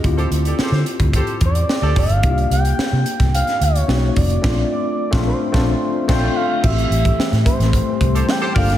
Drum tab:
CC |----------------|----------------|x-----------x---|x---------------|
HH |xxxx--xxxxxx--ox|xxxx--xxxxxx--ox|----------------|-xxx-xxxx-xx--ox|
SD |----oo------o---|----o--o-o--o---|o----o--o---o---|----oo-o----o--o|
BD |o------oo-o---o-|o------o------o-|o----o--o---o---|o--o--o-o-o---o-|